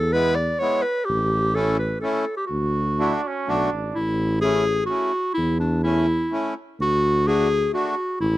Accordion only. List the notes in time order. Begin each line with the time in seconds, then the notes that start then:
0.13 G#3 B3 E4
0.60 G#3 B3 E4
1.55 A3 C#4 E4
2.02 A3 C#4 E4
2.99 A3 D4 F#4
3.47 A3 D4 F#4
4.42 A3 C#4 E4
4.89 A3 C#4 E4
5.84 A3 C#4 E4
6.31 A3 C#4 E4
7.26 A3 D4 F#4
7.73 A3 D4 F#4